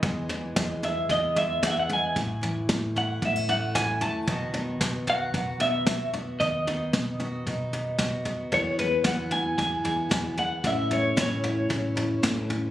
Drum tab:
SD |--o---o-|--o---o-|--o---o-|--o---o-|
FT |oooooooo|oooooooo|oooooooo|oooooooo|
BD |o-o-o-o-|o-o-o-o-|o-o-o-o-|o-o-o-o-|

SD |--o---o-|--o---o-|
FT |oooooooo|oooooooo|
BD |o-o-o-o-|o-o-o-o-|